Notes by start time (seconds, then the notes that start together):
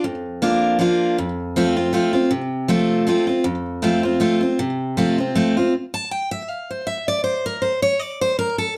0.04 F2
0.42 F3 A#3 D4 F4
0.79 F3 A#3 D4 F4
1.18 F2
1.56 F3 A3 C4 F4
1.76 C4 F4
1.93 F3 A3 C4 F4
2.13 C4 F4
2.31 C3
2.68 F3 A3 C4 F4
3.07 F3 A3 C4 F4
3.27 C4 F4
3.44 F2
3.82 F3 A3 C4 F4
4.03 C4 F4
4.20 F3 A3 C4 F4
4.41 C4 F4
4.59 C3
4.97 F3 A3 C4 F4
5.18 C4 F4
5.35 F3 A3 C4 F4
5.57 C4 F4
5.94 A5
6.11 G5
6.31 E5
6.49 F5
6.71 C5
6.87 E5
7.08 D5
7.24 C5
7.46 A#4
7.62 C5
7.82 C#5
7.99 D5
8.21 C5
8.39 A#4
8.58 A4